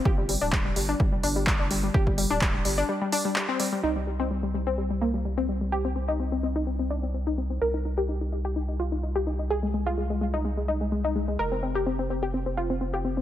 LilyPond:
<<
  \new Staff \with { instrumentName = "Synth pluck" } { \time 4/4 \key c \minor \tempo 4 = 127 g'16 g16 g16 d'16 g16 g16 g16 d'16 g16 g16 d'16 g16 g16 d'16 g16 g16 | g'16 g16 g16 d'16 g16 g16 g16 d'16 g16 g16 d'16 g16 g16 c'16 g16 g16 | ees'16 g16 g16 c'16 g16 g16 g16 c'16 g16 g16 bes16 g16 g16 c'16 g16 g16 | g'16 c'16 c'16 ees'16 c'16 c'16 c'16 ees'16 c'16 c'16 d'16 c'16 c'16 ees'16 c'16 c'16 |
bes'16 ees'16 ees'16 g'16 ees'16 ees'16 ees'16 g'16 ees'16 ees'16 f'16 ees'16 ees'16 g'16 ees'16 ees'16 | aes'16 aes16 aes16 f'16 aes16 aes16 aes16 ees'16 aes16 aes16 ees'16 aes16 aes16 ees'16 aes16 aes16 | bes'16 c'16 c'16 g'16 c'16 c'16 c'16 g'16 c'16 c'16 f'16 c'16 c'16 g'16 c'16 c'16 | }
  \new Staff \with { instrumentName = "Sub bass" } { \clef bass \time 4/4 \key c \minor g,,8. d,,8. g,,8 g,,8 g,,8. g,,8. | g,,8. d,,8. g,,8 r2 | c,1~ | c,1 |
c,1~ | c,1 | f,,1 | }
  \new DrumStaff \with { instrumentName = "Drums" } \drummode { \time 4/4 bd8 hho8 <hc bd>8 hho8 bd8 hho8 <hc bd>8 hho8 | bd16 bd16 hho8 <hc bd>8 hho8 r8 hho8 hc8 hho8 | r4 r4 r4 r4 | r4 r4 r4 r4 |
r4 r4 r4 r4 | r4 r4 r4 r4 | r4 r4 r4 r4 | }
>>